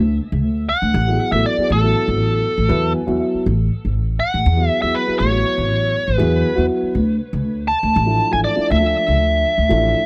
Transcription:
Already playing: D2
0.32 C#2
0.44 D2
0.69 F#5
0.82 D2
0.94 A1
1.07 F#3 B3 E4 G#4
1.32 A1 F#3 B3 E4 A4 E5
1.46 D5
1.58 F#3 B3 E4 G#4, muted upright bass stroke
1.70 A1 A4
1.81 F#3 B3 E4 A4
2.08 G#1
2.19 A1
2.58 A1
2.69 E2 F#3 B3 E4 B4
2.94 G#5
3.06 E2 F#3 B3 E4 F#4
3.19 E5
3.34 muted upright bass stroke
3.46 A1
3.85 G#1
3.97 A1
4.20 F#5
4.34 A1
4.46 E2
4.56 F#3 B3 E4 G#4
4.69 E5
4.81 E2 F#3 B3 E4 G#4 E5
4.95 B4
5.06 F#3 B3 E4 G#4, muted upright bass stroke
5.19 A1 C#5
5.31 F#3 B3 E4 F#4
5.58 G#1
5.70 A1
6.08 A1
6.17 E2 F#3 B3 E4 G#4 B4
6.55 E2 F#3 B3 E4 F#4
6.83 muted upright bass stroke
6.95 D2
7.33 C#2
7.45 D2
7.68 A5
7.83 D2
7.96 A1
8.06 F3 A3 D4 E4
8.31 A1 F3 A3 D4 E4 G#5
8.44 D5
8.55 F3 A3 D4 E4, muted upright bass stroke
8.71 D2 E5
8.79 F3 A3 D4 F4
9.08 C#2
9.20 D2
9.58 D2
9.69 A1 F3 A3 D4 E4

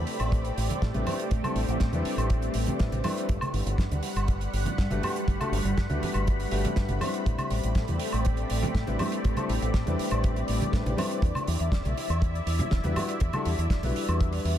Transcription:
Already playing: A3 C4 G4 D5 B5
0.07 open hi-hat
0.20 A1, closed hi-hat, high woodblock
0.32 kick, closed hi-hat
0.45 closed hi-hat
0.57 A1, open hi-hat
0.70 muted fingered electric bass stroke, closed hi-hat, high conga, low conga
0.82 A2, kick, snare, closed hi-hat
0.94 A1 G3 C4 D4 E4 B4, closed hi-hat, high conga
1.06 G3 C4 D4 E4 B4, open hi-hat, low conga, high woodblock
1.19 closed hi-hat
1.31 A1, kick, closed hi-hat
1.43 G3 C4 D4 E4 A4, closed hi-hat, high conga, high woodblock
1.55 A1, open hi-hat
1.68 A1, closed hi-hat
1.80 A2, kick, snare, closed hi-hat
1.92 E2 G3 C4 D4 E4 B4, closed hi-hat, high conga
2.05 muted fingered electric bass stroke, open hi-hat
2.17 A1, closed hi-hat, high woodblock
2.30 kick, closed hi-hat
2.42 closed hi-hat
2.54 A1, open hi-hat
2.66 muted fingered electric bass stroke, closed hi-hat, high conga, low conga
2.79 A2 G3 C4 D4 E4 B4, kick, snare, closed hi-hat
2.92 A1, closed hi-hat, high conga
3.04 G3 C4 D4 E4 B4, open hi-hat, low conga, high woodblock
3.17 closed hi-hat
3.29 G1 G3 F#5 B5, kick, closed hi-hat
3.41 closed hi-hat, high conga, high woodblock
3.54 G1, open hi-hat
3.66 G1, closed hi-hat
3.78 G2, kick, snare, closed hi-hat
3.91 D2, closed hi-hat, high conga
4.03 open hi-hat
4.16 G1, closed hi-hat, high woodblock
4.28 kick, closed hi-hat
4.41 closed hi-hat
4.53 G1, open hi-hat
4.65 closed hi-hat, high conga, low conga
4.78 G2, kick, snare, closed hi-hat
4.90 G1 A3 D4 F#4 G4 B4, closed hi-hat, high conga
5.03 A3 D4 F#4 G4 B4, open hi-hat, low conga, high woodblock
5.16 closed hi-hat
5.28 G1, kick, closed hi-hat
5.40 A3 D4 F#4 G4 A4, closed hi-hat, high conga, high woodblock
5.52 G1, open hi-hat
5.64 G1, closed hi-hat
5.77 G2, kick, snare, closed hi-hat
5.89 D2 A3 D4 F#4 G4 B4, closed hi-hat, high conga
6.02 muted fingered electric bass stroke, open hi-hat, low conga
6.14 G1, closed hi-hat, high woodblock
6.27 kick, closed hi-hat
6.40 open hi-hat
6.51 G1 A3 D4 F#4 G4 B4, open hi-hat
6.65 muted fingered electric bass stroke, closed hi-hat, high conga, low conga
6.76 G2, kick, snare, closed hi-hat
6.89 G1, closed hi-hat, high conga
7.00 G3 C4 D4 E4 C5, open hi-hat, low conga, high woodblock
7.14 closed hi-hat
7.26 A1 A3 C4 G4 D5, kick, closed hi-hat
7.38 closed hi-hat, high conga, high woodblock
7.51 A1, open hi-hat
7.63 A1, closed hi-hat
7.75 A2, kick, snare, closed hi-hat
7.88 E2, closed hi-hat, high conga
7.99 open hi-hat
8.13 A1, closed hi-hat, high woodblock
8.25 kick, closed hi-hat
8.37 closed hi-hat
8.50 A1, open hi-hat
8.63 muted fingered electric bass stroke, closed hi-hat, high conga, low conga
8.75 A2, kick, snare, closed hi-hat
8.87 A1 G3 C4 D4 E4 B4, closed hi-hat, high conga
8.99 G3 C4 D4 E4 B4, open hi-hat, low conga, high woodblock
9.12 closed hi-hat
9.24 A1, kick, closed hi-hat
9.36 G3 C4 D4 E4 A4, closed hi-hat, high conga, high woodblock
9.49 A1, open hi-hat
9.62 A1, closed hi-hat
9.74 A2, kick, snare, closed hi-hat
9.86 E2 G3 C4 D4 E4 B4, closed hi-hat, high conga
9.99 muted fingered electric bass stroke, open hi-hat
10.11 A1, closed hi-hat, high woodblock
10.24 kick, closed hi-hat
10.36 closed hi-hat
10.48 A1, open hi-hat
10.61 closed hi-hat, high conga, low conga
10.72 A2 G3 C4 D4 E4 B4, kick, snare, closed hi-hat
10.86 A1, closed hi-hat, high conga
10.97 G3 C4 D4 E4 B4, open hi-hat, low conga, high woodblock
11.11 closed hi-hat
11.22 E2 E4 E5, kick, closed hi-hat
11.35 closed hi-hat, high conga, high woodblock
11.47 E2, open hi-hat
11.60 E2, closed hi-hat
11.72 E1, kick, snare, closed hi-hat
11.85 B1, closed hi-hat, high conga
11.97 open hi-hat
12.09 E2, closed hi-hat, high woodblock
12.22 kick, closed hi-hat
12.35 closed hi-hat
12.46 E2, open hi-hat
12.59 muted fingered electric bass stroke, closed hi-hat, high conga, low conga
12.71 E1, kick, snare, closed hi-hat
12.84 E2 G3 D4 E4 F#4 B4, closed hi-hat, high conga
12.96 G3 D4 E4 F#4 B4, open hi-hat, low conga, high woodblock
13.09 closed hi-hat
13.20 E2, kick, closed hi-hat
13.33 G3 D4 E4 F#4 A4, closed hi-hat, high conga, high woodblock
13.45 E2, open hi-hat
13.58 E2, closed hi-hat
13.70 E1, kick, snare, closed hi-hat
13.83 B1 G3 D4 E4 F#4 B4, open hi-hat, high conga
13.96 open hi-hat
14.08 E2, closed hi-hat, high woodblock
14.21 kick, closed hi-hat
14.33 open hi-hat
14.45 E2, open hi-hat

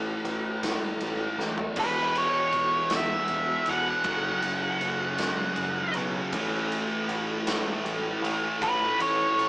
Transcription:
Already playing: A1 A2 E3 A3
0.24 A1, ride
0.63 A2 E3 A3, kick, snare, ride
1.00 A1, ride
1.38 A1, snare
1.58 floor tom
1.76 E1 E2 B2 E3 B4, kick, ride, crash
2.15 C#5, ride
2.52 E1, ride
2.90 E1 E2 B2 E3, snare, ride
2.96 E5
3.28 E1, ride
3.66 E1 B2 E3, ride
3.70 E2 F#5
4.04 F#1 F#2 C#3 F#3, kick, ride
4.42 F#1, ride
4.81 F#1, ride
5.18 C#3 F#3, kick, snare, ride
5.23 F#2
5.56 F#1, ride
5.94 B1 C#3 F#3, ride
5.98 F#2
6.32 A1 A2 E3 A3, kick, ride
6.72 ride
7.09 A1, ride
7.47 A1 E3 A3, snare, ride
7.51 A2
7.84 A1, ride
8.22 A1 E3 A3, ride
8.27 A2
8.61 A1 A2 E3 A3 B4, kick, ride
8.99 A1 C#5, ride
9.36 A1, ride

